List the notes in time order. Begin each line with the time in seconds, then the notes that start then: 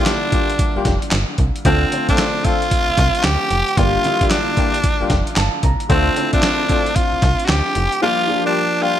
Already playing: D3 G3 A#3 D4 E4 F4 G4
0.06 D4, snare, clap, closed hi-hat
0.32 G3 A#3 D4 F4 G4, kick, closed hi-hat
0.50 closed hi-hat
0.59 kick, closed hi-hat
0.75 F1 G3 A#3 D4 F4 G4
0.85 F1, kick, snare, closed hi-hat
1.02 closed hi-hat
1.11 G1, snare, clap, closed hi-hat
1.38 C2, kick, closed hi-hat
1.56 closed hi-hat
1.65 D2 D3 A3 C4 D4 F4 A4, kick, closed hi-hat
1.92 D3 A3 C4 F4, closed hi-hat
2.08 C2 A3 C4 D4 F4 A4, kick, closed hi-hat
2.18 snare, clap, closed hi-hat
2.44 A3 C4 D4 F4 A4, kick, closed hi-hat
2.62 closed hi-hat
2.71 kick, closed hi-hat
2.89 C2
2.97 C2, kick, snare, closed hi-hat
3.15 closed hi-hat
3.24 D2 G4, snare, clap, closed hi-hat
3.50 F1, closed hi-hat
3.68 closed hi-hat
3.77 G1 D3 G3 A#3 D4 F4 G4, kick, closed hi-hat
4.04 D3 G3 A#3 E4, closed hi-hat
4.20 F1 G3 A#3 D4 F4 G4, kick, closed hi-hat
4.30 D4, snare, clap, closed hi-hat
4.56 G3 A#3 D4 F4 G4, kick, closed hi-hat
4.74 closed hi-hat
4.84 kick, closed hi-hat
5.00 F1 G3 A#3 D4 F4 G4
5.10 F1 F5, kick, snare, closed hi-hat
5.27 closed hi-hat
5.36 G1 A5, snare, clap, closed hi-hat
5.63 C2 A#5, kick, closed hi-hat
5.80 closed hi-hat
5.89 D2 D3 A3 C4 D4 F4 A4, kick, closed hi-hat
6.16 D3 A3 C4 E4, closed hi-hat
6.33 C2 A3 C4 D4 F4 A4, kick, closed hi-hat
6.43 snare, clap, closed hi-hat
6.69 A3 C4 D4 F4 A4, kick, closed hi-hat
6.86 closed hi-hat
6.96 F4, kick, closed hi-hat
7.13 C2
7.22 C2, kick, snare, closed hi-hat
7.39 closed hi-hat
7.45 D2 F#4, snare, clap, closed hi-hat
7.49 G4
7.75 F1, closed hi-hat
7.92 closed hi-hat
8.02 F3 G3 A#3 D4 F4 G4
8.28 F3 A#3 D4 G4
8.45 G3 A#3 D4 F4 G4
8.81 G3 A#3 D4 F4 G4